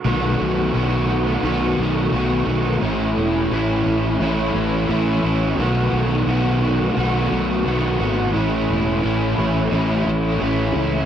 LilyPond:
<<
  \new Staff \with { instrumentName = "Overdriven electric guitar" } { \time 4/4 \key b \mixolydian \tempo 4 = 87 <b, dis a b fis'>4 <dis a b fis'>8 <a b fis'>8 <dis a b fis'>4 <dis a b fis'>8 <a b fis'>8 | <a, e a cis' e'>4 <e a cis' e'>8 <a cis' e'>8 <e a cis' e'>4 <e a cis' e'>8 <a cis' e'>8 | <b, dis a b fis'>4 <dis a b fis'>8 <a b fis'>8 <dis a b fis'>4 <dis a b fis'>8 <a b fis'>8 | <a, e a cis' e'>4 <e a cis' e'>8 <a cis' e'>8 <e a cis' e'>4 <e a cis' e'>8 <a cis' e'>8 | }
  \new Staff \with { instrumentName = "Overdriven electric guitar" } { \time 4/4 \key b \mixolydian <b, dis a b fis'>4 <dis a b fis'>4 <b, dis a b fis'>8 <a b fis'>8 <dis a b fis'>4 | <a, e a cis' e'>4 <e a cis' e'>4 <a, e a cis' e'>8 <a cis' e'>8 <e a cis' e'>4 | <b, dis a b fis'>4 <dis a b fis'>4 <b, dis a b fis'>8 <a b fis'>8 <dis a b fis'>4 | <a, e a cis' e'>4 <e a cis' e'>4 <a, e a cis' e'>8 <a cis' e'>8 <e a cis' e'>4 | }
  \new Staff \with { instrumentName = "Fingered electric bass" } { \clef bass \time 4/4 \key b \mixolydian b,,8 b,,8 b,,4 b,,8 b,,8 b,,8 b,,8 | a,,8 e,,8 a,,8 a,,8 a,,8 a,,8 a,,8 a,,8 | b,,8 b,,8 b,,4 b,,8 b,,8 b,,8 gis,,8 | a,,8 e,,8 a,,8 a,,8 a,,8 a,,8 a,,8 cis,8 | }
>>